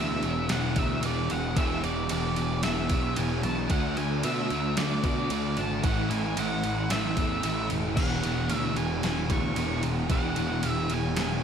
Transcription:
Already playing: D2 E2 B2 E3
0.00 E3 B3 D4 G#4 E5
0.23 E1 B3 D4 G#4, ride
0.49 E1 E2 B2 E3 F#5, snare, ride
0.76 D2 B2 E3 B3 D4 G#4 E5, kick, ride
1.02 E1 E2 B2 E3 B3 D4 G#4 D5, ride
1.29 E1 B2 E3 F#5, snare, ride
1.56 E1 E2 B2 E3 B3 D4 G#4 E5, kick, ride
1.82 E1 B2 E3 B3 D4 G#4 D5, ride
2.08 E1 E2 B2 E3 B3 D5, ride
2.13 D4 G#4
2.36 E1 B3 D4 G#4, ride
2.63 E1 E2 B2 E3 E5, snare, ride
2.89 B1 B2 E3 B3 D4 G#4, kick, ride
3.16 E1 E2 B2 E3 B3 D4 G#4 G#5, ride
3.42 B1 B2 E3 A5, snare, ride
3.69 D2 D3 A3 D4 F#5, kick, ride
3.73 F#4
3.95 D2 A3 D4 F#4 G#5, ride
4.00 A3
4.22 B2 D3 A3 D4 E5, ride
4.26 F#4
4.50 D2 A3 D4 F#4, ride
4.77 D2 D3 A3 D4 D5, snare, ride
5.02 B2 A3 D4 F#4 D5, kick, ride
5.07 A3
5.29 D2 D3 A3 D4, ride
5.33 F#4 D5
5.56 G#1 A3 D4 A5, snare, ride
5.83 A1 A2 E3 A3 C#4 E4 F#5, kick, ride
6.09 A1 E3 A3 C#4 E4 G#5, ride
6.13 A3
6.24 G#5
6.36 A1 A2 E3 A3 C#4 E4 F#5, ride
6.64 A1 A3 C#4 E4, ride
6.90 A1 A2 E3 A3 E5, snare, ride
7.16 E2 E3 A3 C#4 E4, kick, ride
7.43 A1 A2 E3 A3 C#4 E4, ride
7.69 E1 E3 A3, ride
7.96 E1 E2 B2 E3 B3 D4 G#4 F#5, kick, crash
8.23 E1 B2 E3 B3 D4 G#4, ride
8.49 D2 E2 B2 E3 B3 D4 G#4, ride
8.57 E5
8.76 E1 B3 D4 G#4 G#5, ride
9.03 E1 E2 B2 E3 G#5, snare, ride
9.29 D2 B2 E3 B3 D4 G#4 C#6, kick, ride
9.56 E1 E2 B2 E3 B3 D4 G#4, ride
9.82 E1 B2 E3, ride
10.09 E1 E2 B2 E3 B3 D4 G#4 F#5, kick, ride
10.35 E1 B2 E3 D4 G#4, ride
10.40 B3
10.62 E1 E2 B2 E3 B3 D4, ride
10.66 G#4
10.72 E5
10.90 E1 B3 D4 G#4 G#5, ride
11.16 E1 E2 B2 E3 G#5, snare, ride

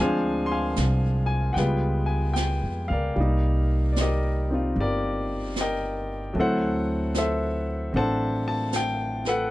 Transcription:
Already playing: D2 G#5
0.00 F3 G#3 C4 D4 C5 F5
0.46 C6
0.51 F5 G#5
0.76 C2, snare, hi-hat pedal
1.26 G#5
1.53 C#2 F#5 G5, brush sweep, snare
1.57 G3 G#3 B3 F4 B4
2.06 G#5
2.34 G5, snare, hi-hat pedal
2.63 F2
2.88 C#2 D5 F5
2.92 A#4
3.16 C2 G3 A#3, brush sweep
3.20 D#4
3.93 D5, snare, hi-hat pedal
4.01 G4 A#4 D#5
4.50 C4 D#4 F4
4.76 G1, brush sweep
4.80 G4 A#4 D5
5.56 snare, hi-hat pedal
5.60 A#4 D#5 G5
6.33 D2 F#3 A3 C4, brush sweep
6.39 E4 A4 C5 F#5
7.14 A4 C5 E5, snare, hi-hat pedal
7.93 A1 C4 D4 A4 C5 F#5, brush sweep
7.97 A5
8.48 A5
8.73 G5, snare, hi-hat pedal
9.25 A4 B4, snare
9.29 F#5

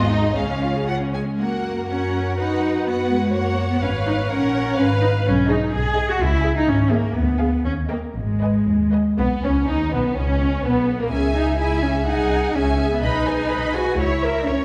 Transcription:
Already playing: G#1 G#2 F4 D#5
0.10 D#4
0.22 G#4
0.35 C#2 C#3 G#3 C#4 F5
0.48 C#4
0.61 F4
0.75 G#4
0.87 F4 F#5
1.00 C#4
1.14 G#3 G#5
1.26 C#4
1.39 F#2 A#3 F#4 A#4 F#5
1.88 C#4 F#4 A#4 F#5
2.36 D#4 F#4 B4 F#5
2.85 B3 F#4 B4 F#5
3.10 G#3
3.32 F#2 A#3 F#4 C#5 F#5
3.71 B3
3.82 G#1 C#4 B4 C#5 F5
4.06 D#4
4.30 A#1 C#4 A#4 C#5 F#5
4.77 G#1 C#4 B4 F5
5.01 D#4
5.25 B1 C#4
5.48 D#4 G#4 D#5 G#5
5.72 B1 G#4
5.96 G#4 D#5 G#5
6.09 F#4
6.20 C#2 E4
6.43 G#4 E5 G#5
6.56 D#4
6.67 G#1 C#4
6.91 A#3 G#4 E5 G#5
7.15 D2 B3
7.39 G#4 F5 G#5
7.64 D#2 C#4
7.89 A#3 A#4 D#5 G5
8.15 G#1 G#3
8.41 B4 D#5 G#5
8.67 D#2
8.94 B4 D#5 G#5
9.18 B1 B3
9.44 C#2 C#4
9.68 D#2 D#4
9.93 B1 B3
10.17 C#2 C#4
10.64 B1 B3
11.00 A#1 A#3
11.11 C#2 C#4 G#4 E5 G#5
11.35 D#4
11.59 E4 G#4 E5 G#5
11.83 C#4
12.06 C2 D#4 G#4 F#5 G#5
12.54 C#2 C#4 G#4 E5 G#5
12.92 B3
13.02 B1 D#4 B4 D#5 B5
13.27 G#4 B4 G#5
13.50 B1 B4 D#5 B5
13.74 F#4 G#4 B4 G#5
13.98 C#2 E4 C#5
14.23 A#4 E5
14.47 C#2 C#4 C#5

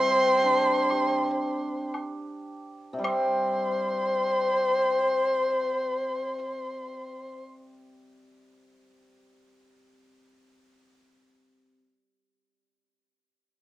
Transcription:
Already playing: C3 G3 C4 C5 C6
0.44 D4
0.90 G4, high woodblock
1.94 high woodblock, low woodblock
2.93 C3 D5
2.98 G3
3.04 C4 C5 C6, high woodblock

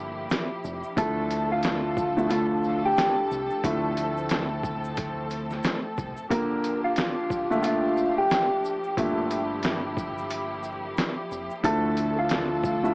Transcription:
Already playing: G1 A#2 D3 F3 A3 E4 G4
0.30 snare, closed hi-hat, shaker
0.64 F1, shaker
0.84 shaker
0.97 D2 A2 D3 F3 A3 D4 A4, kick, closed hi-hat, shaker
1.31 closed hi-hat, shaker
1.52 F4
1.63 snare, closed hi-hat, shaker
1.97 kick, shaker
2.17 A2 D3 F3 A3, shaker
2.29 A2 D3 F3 A3 F4, closed hi-hat, shaker
2.63 shaker
2.85 G4
2.97 snare, closed hi-hat, shaker
3.31 C2, shaker
3.50 shaker
3.63 D2 A2 D3 F3 A3 C4, kick, closed hi-hat, shaker
3.97 closed hi-hat, shaker
4.17 shaker
4.29 snare, closed hi-hat, shaker
4.63 kick, shaker
4.85 shaker
4.96 kick, closed hi-hat, shaker
5.30 closed hi-hat, shaker
5.50 snare, shaker
5.64 snare, closed hi-hat, shaker
5.98 C2, kick, shaker
6.17 shaker
6.30 A#2 D3 F3 A#3 D4 G4 A#4, kick, closed hi-hat, shaker
6.64 closed hi-hat, shaker
6.84 F4
6.96 snare, closed hi-hat, shaker
7.30 kick, shaker
7.50 A#2 D3 F3 A3, shaker
7.62 A#2 D3 F3 A3 F4, closed hi-hat, shaker
7.97 shaker
8.18 G4
8.30 snare, closed hi-hat, shaker
8.64 shaker
8.84 shaker
8.97 G1 A#2 D3 F3 A3 E4, kick, closed hi-hat, shaker
9.31 closed hi-hat, shaker
9.63 snare, closed hi-hat, shaker
9.97 kick, shaker
10.18 shaker
10.30 closed hi-hat, shaker
10.63 shaker
10.97 snare, closed hi-hat, shaker
11.31 F1, shaker
11.50 shaker
11.63 D2 A2 D3 F3 A3 D4 A4, kick, closed hi-hat, shaker
11.97 closed hi-hat, shaker
12.19 F4
12.29 snare, closed hi-hat, shaker
12.64 kick, shaker
12.83 A2 D3 F3 A3, shaker

